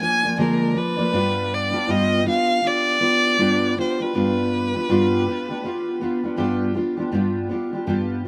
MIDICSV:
0, 0, Header, 1, 3, 480
1, 0, Start_track
1, 0, Tempo, 750000
1, 722, Time_signature, 4, 2, 24, 8
1, 5298, End_track
2, 0, Start_track
2, 0, Title_t, "Violin"
2, 0, Program_c, 0, 40
2, 13, Note_on_c, 0, 80, 103
2, 231, Note_off_c, 0, 80, 0
2, 257, Note_on_c, 0, 70, 95
2, 497, Note_on_c, 0, 71, 102
2, 506, Note_off_c, 0, 70, 0
2, 986, Note_on_c, 0, 74, 89
2, 996, Note_off_c, 0, 71, 0
2, 1222, Note_on_c, 0, 75, 101
2, 1232, Note_off_c, 0, 74, 0
2, 1451, Note_off_c, 0, 75, 0
2, 1461, Note_on_c, 0, 77, 104
2, 1706, Note_on_c, 0, 74, 111
2, 1716, Note_off_c, 0, 77, 0
2, 2413, Note_off_c, 0, 74, 0
2, 2435, Note_on_c, 0, 72, 83
2, 2570, Note_on_c, 0, 71, 85
2, 2580, Note_off_c, 0, 72, 0
2, 4094, Note_off_c, 0, 71, 0
2, 5298, End_track
3, 0, Start_track
3, 0, Title_t, "Steel-string acoustic guitar"
3, 0, Program_c, 1, 25
3, 4, Note_on_c, 1, 53, 62
3, 12, Note_on_c, 1, 58, 64
3, 15, Note_on_c, 1, 62, 68
3, 19, Note_on_c, 1, 74, 67
3, 144, Note_off_c, 1, 74, 0
3, 148, Note_off_c, 1, 53, 0
3, 148, Note_off_c, 1, 62, 0
3, 151, Note_off_c, 1, 58, 0
3, 152, Note_on_c, 1, 74, 56
3, 156, Note_on_c, 1, 62, 50
3, 159, Note_on_c, 1, 58, 49
3, 165, Note_on_c, 1, 53, 47
3, 240, Note_off_c, 1, 53, 0
3, 241, Note_off_c, 1, 58, 0
3, 242, Note_off_c, 1, 62, 0
3, 243, Note_on_c, 1, 50, 72
3, 244, Note_on_c, 1, 56, 82
3, 245, Note_off_c, 1, 74, 0
3, 248, Note_on_c, 1, 53, 86
3, 249, Note_on_c, 1, 58, 93
3, 250, Note_on_c, 1, 62, 80
3, 252, Note_on_c, 1, 74, 82
3, 468, Note_off_c, 1, 53, 0
3, 473, Note_off_c, 1, 58, 0
3, 475, Note_off_c, 1, 62, 0
3, 476, Note_on_c, 1, 53, 58
3, 479, Note_off_c, 1, 74, 0
3, 481, Note_on_c, 1, 58, 64
3, 482, Note_off_c, 1, 50, 0
3, 483, Note_off_c, 1, 56, 0
3, 483, Note_on_c, 1, 62, 66
3, 486, Note_on_c, 1, 74, 65
3, 610, Note_off_c, 1, 74, 0
3, 618, Note_off_c, 1, 62, 0
3, 618, Note_on_c, 1, 74, 63
3, 621, Note_off_c, 1, 58, 0
3, 623, Note_off_c, 1, 53, 0
3, 625, Note_on_c, 1, 62, 49
3, 629, Note_on_c, 1, 58, 53
3, 632, Note_on_c, 1, 53, 50
3, 718, Note_off_c, 1, 74, 0
3, 718, Note_on_c, 1, 43, 84
3, 720, Note_off_c, 1, 62, 0
3, 721, Note_off_c, 1, 53, 0
3, 721, Note_on_c, 1, 55, 77
3, 723, Note_off_c, 1, 58, 0
3, 724, Note_on_c, 1, 59, 85
3, 727, Note_on_c, 1, 65, 91
3, 728, Note_on_c, 1, 62, 88
3, 728, Note_on_c, 1, 67, 83
3, 1087, Note_off_c, 1, 67, 0
3, 1094, Note_off_c, 1, 62, 0
3, 1095, Note_on_c, 1, 67, 50
3, 1098, Note_off_c, 1, 65, 0
3, 1102, Note_off_c, 1, 59, 0
3, 1102, Note_on_c, 1, 62, 52
3, 1103, Note_off_c, 1, 43, 0
3, 1105, Note_off_c, 1, 55, 0
3, 1105, Note_on_c, 1, 65, 50
3, 1110, Note_on_c, 1, 59, 49
3, 1196, Note_off_c, 1, 65, 0
3, 1196, Note_off_c, 1, 67, 0
3, 1197, Note_off_c, 1, 59, 0
3, 1197, Note_on_c, 1, 43, 91
3, 1199, Note_off_c, 1, 62, 0
3, 1202, Note_on_c, 1, 55, 88
3, 1204, Note_on_c, 1, 65, 94
3, 1205, Note_on_c, 1, 59, 90
3, 1209, Note_on_c, 1, 67, 91
3, 1431, Note_off_c, 1, 59, 0
3, 1438, Note_off_c, 1, 65, 0
3, 1439, Note_off_c, 1, 43, 0
3, 1439, Note_on_c, 1, 59, 59
3, 1441, Note_off_c, 1, 55, 0
3, 1445, Note_off_c, 1, 67, 0
3, 1446, Note_on_c, 1, 65, 72
3, 1447, Note_on_c, 1, 62, 68
3, 1452, Note_on_c, 1, 67, 65
3, 1668, Note_off_c, 1, 59, 0
3, 1673, Note_off_c, 1, 65, 0
3, 1676, Note_on_c, 1, 59, 59
3, 1679, Note_off_c, 1, 62, 0
3, 1680, Note_on_c, 1, 65, 58
3, 1683, Note_off_c, 1, 67, 0
3, 1687, Note_on_c, 1, 62, 67
3, 1691, Note_on_c, 1, 67, 76
3, 1914, Note_off_c, 1, 59, 0
3, 1917, Note_off_c, 1, 65, 0
3, 1921, Note_off_c, 1, 62, 0
3, 1921, Note_on_c, 1, 59, 64
3, 1925, Note_off_c, 1, 67, 0
3, 1925, Note_on_c, 1, 65, 63
3, 1928, Note_on_c, 1, 62, 67
3, 1933, Note_on_c, 1, 67, 72
3, 2161, Note_off_c, 1, 59, 0
3, 2161, Note_off_c, 1, 65, 0
3, 2164, Note_off_c, 1, 62, 0
3, 2165, Note_on_c, 1, 43, 78
3, 2165, Note_on_c, 1, 55, 76
3, 2167, Note_off_c, 1, 67, 0
3, 2169, Note_on_c, 1, 65, 87
3, 2170, Note_on_c, 1, 59, 77
3, 2172, Note_on_c, 1, 62, 94
3, 2175, Note_on_c, 1, 67, 87
3, 2402, Note_off_c, 1, 55, 0
3, 2402, Note_off_c, 1, 59, 0
3, 2403, Note_off_c, 1, 43, 0
3, 2404, Note_off_c, 1, 65, 0
3, 2406, Note_off_c, 1, 62, 0
3, 2407, Note_off_c, 1, 67, 0
3, 2410, Note_on_c, 1, 59, 68
3, 2416, Note_on_c, 1, 65, 66
3, 2417, Note_on_c, 1, 62, 64
3, 2422, Note_on_c, 1, 67, 66
3, 2549, Note_off_c, 1, 59, 0
3, 2550, Note_off_c, 1, 67, 0
3, 2552, Note_off_c, 1, 65, 0
3, 2553, Note_off_c, 1, 62, 0
3, 2558, Note_on_c, 1, 67, 56
3, 2561, Note_on_c, 1, 62, 52
3, 2565, Note_on_c, 1, 65, 45
3, 2571, Note_on_c, 1, 59, 44
3, 2647, Note_off_c, 1, 59, 0
3, 2647, Note_off_c, 1, 67, 0
3, 2649, Note_off_c, 1, 62, 0
3, 2649, Note_off_c, 1, 65, 0
3, 2651, Note_on_c, 1, 43, 81
3, 2654, Note_on_c, 1, 55, 84
3, 2655, Note_on_c, 1, 59, 85
3, 2656, Note_on_c, 1, 62, 85
3, 2657, Note_on_c, 1, 65, 90
3, 2657, Note_on_c, 1, 67, 88
3, 3025, Note_off_c, 1, 67, 0
3, 3030, Note_off_c, 1, 43, 0
3, 3031, Note_off_c, 1, 55, 0
3, 3032, Note_off_c, 1, 59, 0
3, 3032, Note_off_c, 1, 62, 0
3, 3032, Note_on_c, 1, 67, 50
3, 3033, Note_off_c, 1, 65, 0
3, 3039, Note_on_c, 1, 62, 49
3, 3043, Note_on_c, 1, 65, 46
3, 3047, Note_on_c, 1, 59, 42
3, 3124, Note_off_c, 1, 67, 0
3, 3127, Note_off_c, 1, 65, 0
3, 3128, Note_off_c, 1, 59, 0
3, 3128, Note_off_c, 1, 62, 0
3, 3129, Note_on_c, 1, 55, 93
3, 3130, Note_on_c, 1, 43, 98
3, 3135, Note_on_c, 1, 65, 98
3, 3136, Note_on_c, 1, 59, 96
3, 3140, Note_on_c, 1, 62, 91
3, 3140, Note_on_c, 1, 67, 94
3, 3362, Note_off_c, 1, 59, 0
3, 3365, Note_off_c, 1, 43, 0
3, 3365, Note_off_c, 1, 55, 0
3, 3368, Note_off_c, 1, 65, 0
3, 3370, Note_off_c, 1, 62, 0
3, 3370, Note_off_c, 1, 67, 0
3, 3370, Note_on_c, 1, 59, 63
3, 3380, Note_on_c, 1, 65, 70
3, 3383, Note_on_c, 1, 62, 67
3, 3385, Note_on_c, 1, 67, 70
3, 3503, Note_off_c, 1, 67, 0
3, 3509, Note_off_c, 1, 59, 0
3, 3511, Note_on_c, 1, 67, 57
3, 3512, Note_off_c, 1, 62, 0
3, 3514, Note_off_c, 1, 65, 0
3, 3520, Note_on_c, 1, 62, 59
3, 3524, Note_on_c, 1, 65, 49
3, 3529, Note_on_c, 1, 59, 50
3, 3602, Note_off_c, 1, 59, 0
3, 3604, Note_off_c, 1, 67, 0
3, 3607, Note_off_c, 1, 65, 0
3, 3608, Note_off_c, 1, 62, 0
3, 3609, Note_on_c, 1, 59, 72
3, 3614, Note_on_c, 1, 65, 74
3, 3619, Note_on_c, 1, 62, 69
3, 3621, Note_on_c, 1, 67, 76
3, 3839, Note_off_c, 1, 59, 0
3, 3847, Note_on_c, 1, 59, 78
3, 3848, Note_off_c, 1, 65, 0
3, 3850, Note_off_c, 1, 62, 0
3, 3851, Note_off_c, 1, 67, 0
3, 3856, Note_on_c, 1, 65, 74
3, 3857, Note_on_c, 1, 62, 73
3, 3863, Note_on_c, 1, 67, 69
3, 3979, Note_off_c, 1, 67, 0
3, 3985, Note_off_c, 1, 62, 0
3, 3987, Note_on_c, 1, 67, 61
3, 3988, Note_off_c, 1, 59, 0
3, 3993, Note_off_c, 1, 65, 0
3, 3993, Note_on_c, 1, 62, 57
3, 4000, Note_on_c, 1, 65, 46
3, 4002, Note_on_c, 1, 59, 51
3, 4072, Note_off_c, 1, 59, 0
3, 4073, Note_on_c, 1, 43, 83
3, 4074, Note_off_c, 1, 65, 0
3, 4076, Note_off_c, 1, 62, 0
3, 4077, Note_off_c, 1, 67, 0
3, 4078, Note_on_c, 1, 55, 87
3, 4080, Note_on_c, 1, 59, 82
3, 4081, Note_on_c, 1, 65, 91
3, 4083, Note_on_c, 1, 62, 94
3, 4084, Note_on_c, 1, 67, 104
3, 4307, Note_off_c, 1, 59, 0
3, 4312, Note_off_c, 1, 65, 0
3, 4315, Note_on_c, 1, 59, 67
3, 4318, Note_off_c, 1, 43, 0
3, 4318, Note_off_c, 1, 62, 0
3, 4320, Note_off_c, 1, 55, 0
3, 4320, Note_on_c, 1, 65, 69
3, 4323, Note_off_c, 1, 67, 0
3, 4326, Note_on_c, 1, 62, 69
3, 4330, Note_on_c, 1, 67, 75
3, 4452, Note_off_c, 1, 67, 0
3, 4455, Note_off_c, 1, 62, 0
3, 4459, Note_on_c, 1, 67, 66
3, 4462, Note_off_c, 1, 59, 0
3, 4462, Note_off_c, 1, 65, 0
3, 4463, Note_on_c, 1, 62, 60
3, 4470, Note_on_c, 1, 65, 50
3, 4475, Note_on_c, 1, 59, 51
3, 4550, Note_off_c, 1, 59, 0
3, 4551, Note_off_c, 1, 62, 0
3, 4551, Note_off_c, 1, 65, 0
3, 4554, Note_on_c, 1, 43, 81
3, 4556, Note_off_c, 1, 67, 0
3, 4557, Note_on_c, 1, 55, 75
3, 4558, Note_on_c, 1, 59, 89
3, 4558, Note_on_c, 1, 65, 88
3, 4559, Note_on_c, 1, 62, 80
3, 4564, Note_on_c, 1, 67, 83
3, 4786, Note_off_c, 1, 59, 0
3, 4792, Note_off_c, 1, 65, 0
3, 4793, Note_on_c, 1, 59, 60
3, 4797, Note_off_c, 1, 62, 0
3, 4798, Note_off_c, 1, 43, 0
3, 4799, Note_off_c, 1, 67, 0
3, 4800, Note_off_c, 1, 55, 0
3, 4800, Note_on_c, 1, 65, 71
3, 4805, Note_on_c, 1, 62, 71
3, 4807, Note_on_c, 1, 67, 66
3, 4934, Note_off_c, 1, 67, 0
3, 4937, Note_off_c, 1, 62, 0
3, 4941, Note_on_c, 1, 67, 50
3, 4942, Note_off_c, 1, 59, 0
3, 4945, Note_on_c, 1, 62, 49
3, 4946, Note_off_c, 1, 65, 0
3, 4954, Note_on_c, 1, 65, 41
3, 4957, Note_on_c, 1, 59, 44
3, 5028, Note_off_c, 1, 59, 0
3, 5028, Note_off_c, 1, 65, 0
3, 5030, Note_off_c, 1, 62, 0
3, 5033, Note_on_c, 1, 43, 82
3, 5035, Note_off_c, 1, 67, 0
3, 5036, Note_on_c, 1, 55, 92
3, 5036, Note_on_c, 1, 59, 93
3, 5036, Note_on_c, 1, 65, 86
3, 5038, Note_on_c, 1, 62, 85
3, 5043, Note_on_c, 1, 67, 101
3, 5269, Note_off_c, 1, 59, 0
3, 5273, Note_off_c, 1, 65, 0
3, 5277, Note_on_c, 1, 59, 58
3, 5278, Note_off_c, 1, 62, 0
3, 5279, Note_off_c, 1, 43, 0
3, 5280, Note_off_c, 1, 55, 0
3, 5284, Note_off_c, 1, 67, 0
3, 5298, Note_off_c, 1, 59, 0
3, 5298, End_track
0, 0, End_of_file